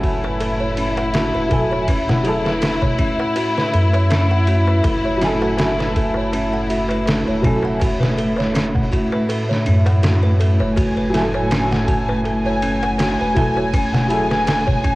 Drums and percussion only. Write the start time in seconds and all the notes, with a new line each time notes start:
0.03 kick, ride
0.24 darbuka tek
0.40 ride, darbuka tek
0.62 darbuka tek
0.77 ride
0.97 ride, darbuka tek
1.14 snare, ride, darbuka tek
1.36 darbuka tek
1.51 kick, ride, darbuka dum
1.73 darbuka tek
1.88 kick, ride, darbuka tek
2.09 snare, darbuka tek, darbuka dum
2.25 ride
2.46 snare, darbuka tek
2.62 snare, ride, darbuka tek
2.82 kick, darbuka tek, darbuka dum
2.99 kick, ride
3.20 darbuka tek
3.36 ride, darbuka tek
3.57 snare, darbuka tek
3.73 ride
3.93 ride, darbuka tek
4.10 snare, ride, darbuka tek
4.31 darbuka tek
4.47 ride
4.68 darbuka tek
4.84 kick, ride, darbuka tek
5.05 darbuka tek
5.22 snare, ride
5.42 darbuka tek
5.57 snare, ride, darbuka tek
5.79 snare, darbuka tek
5.96 kick, ride
6.14 darbuka tek
6.33 ride, darbuka tek
6.52 darbuka tek
6.70 ride
6.89 ride, darbuka tek
7.06 snare, ride, darbuka tek
7.25 darbuka tek
7.43 kick, ride, darbuka dum
7.62 darbuka tek
7.80 kick, ride, darbuka tek
8.00 snare, darbuka tek, darbuka dum
8.18 ride
8.36 snare, darbuka tek
8.54 snare, ride, darbuka tek
8.74 kick, darbuka tek, darbuka dum
8.93 kick, ride
9.12 darbuka tek
9.29 ride, darbuka tek
9.49 snare, darbuka tek
9.66 ride
9.86 ride, darbuka tek
10.03 snare, ride, darbuka tek
10.24 darbuka tek
10.41 ride
10.60 darbuka tek
10.76 kick, ride, darbuka tek
10.97 darbuka tek
11.14 snare, ride
11.34 darbuka tek
11.51 snare, ride, darbuka tek
11.71 snare, darbuka tek
11.88 kick, ride
12.09 darbuka tek
12.24 ride, darbuka tek
12.45 darbuka tek
12.62 ride
12.83 ride, darbuka tek
12.98 snare, ride, darbuka tek
13.19 darbuka tek
13.36 kick, ride, darbuka dum
13.57 darbuka tek
13.73 kick, ride, darbuka tek
13.94 snare, darbuka tek, darbuka dum
14.10 ride
14.31 snare, darbuka tek
14.47 snare, ride, darbuka tek
14.68 kick, darbuka tek, darbuka dum
14.84 kick, ride